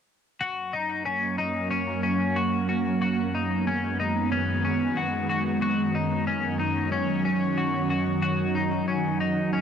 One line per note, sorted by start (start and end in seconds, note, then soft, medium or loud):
0.40 9.61 F#2 medium
0.40 2.99 F#3 medium
0.40 2.99 A#3 medium
0.40 2.99 C#4 medium
0.40 0.73 F#4 medium
0.73 1.05 D#4 medium
1.06 1.38 C#4 medium
1.38 1.70 D#4 medium
1.71 2.02 C#4 medium
2.03 2.36 C#4 medium
2.36 2.68 F#4 medium
2.69 3.01 F#4 medium
3.02 9.61 D#3 medium
3.02 5.60 G#3 medium
3.02 5.60 B3 medium
3.02 3.34 F#4 medium
3.35 3.67 D#4 medium
3.67 3.99 C#4 medium
4.00 4.31 D#4 medium
4.32 4.63 C#4 medium
4.65 4.97 C#4 medium
4.97 5.28 F#4 medium
5.30 5.61 F#4 medium
5.62 9.61 F#3 medium
5.62 8.20 C#4 medium
5.62 5.95 F#4 medium
5.95 6.27 D#4 medium
6.27 6.59 C#4 medium
6.59 6.92 D#4 medium
6.92 7.24 C#4 medium
7.25 7.58 C#4 medium
7.58 7.89 F#4 medium
7.90 8.21 F#4 medium
8.22 9.61 D#4 medium
8.22 8.55 F#4 medium
8.55 8.88 D#4 medium
8.88 9.20 C#4 medium
9.20 9.53 D#4 medium
9.53 9.61 C#4 medium